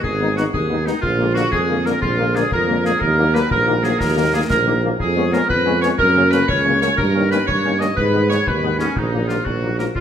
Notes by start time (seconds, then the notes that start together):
0.03 G#1 G#4, concert bass drum
0.21 D#3 G#3 B3 D#4
0.36 D#3 G#3 B3 D#4 F#4, snare
0.53 D#2 G#4, concert bass drum
0.70 D#3 G#3 B3 D#4
0.86 D#3 G#3 B3 D#4, snare
1.01 A#1 F4, concert bass drum
1.19 D3 G#3 A#3
1.35 D3 G#3 A#3 F#4, snare
1.52 F2 G#4, concert bass drum
1.69 D3 G#3 A#3
1.85 D3 G#3 A#3 A#4, snare
2.02 A#1 F4, concert bass drum
2.18 D3 G#3 A#3
2.34 D3 G#3 A#3 G#4, snare
2.52 F2 A#4, concert bass drum
2.68 D3 G#3 A#3
2.85 D3 G#3 A#3 G#4, snare
3.00 D#2 A#4, concert bass drum
3.18 D#3 F#3 A#3
3.33 D#3 F#3 A#3 B4, snare
3.51 A#1 A#4, concert bass drum
3.67 D#3 F#3 A#3
3.83 D#3 F#3 A#3 G#4, snare
4.00 D#2 A#4, concert bass drum, snare
4.16 D#3 F#3 A#3
4.33 D#3 F#3 A#3 G#4
4.50 A#1 A#4, concert bass drum, snare
4.66 D#3 F#3 A#3
4.82 D#3 F#3 A#3
5.00 F2 G#4, concert bass drum
5.16 G#3 B3 C#4
5.33 G#3 B3 C#4 A#4, snare
5.49 F2 B4, concert bass drum
5.66 G#3 B3 C#4
5.82 G#3 B3 C#4 C#5, snare
5.98 F#2 A#4, concert bass drum
6.16 C#3 F#3 A#3 C#4
6.31 C#3 F#3 A#3 C#4 B4, snare
6.48 C#2 C#5, concert bass drum
6.64 C#3 F#3 A#3 C#4
6.81 C#3 F#3 A#3 C#4 C#5, snare
6.97 G2 A#4, concert bass drum
7.14 D#3 A#3 C#4
7.30 D#3 A#3 C#4 B4, snare
7.47 G2 C#5, concert bass drum
7.64 D#3 A#3 C#4
7.80 D#3 A#3 C#4 D#5, snare
7.96 G#2 B4, concert bass drum
8.13 D#3 G#3 B3
8.29 D#3 G#3 B3 C#5, snare
8.47 D#2 B4, concert bass drum
8.62 D#3 G#3 B3
8.79 D#3 G#3 B3 C#4, snare
8.96 A#1 D#4, concert bass drum
9.12 A#2 D#3 F#3 A#3
9.28 A#2 D#3 F#3 A#3 F4, snare
9.45 A#1 F#4, concert bass drum
9.62 A#2 D#3 F#3 A#3
9.78 A#2 D#3 F#3 A#3 A#4, snare
9.96 A#1 F4, concert bass drum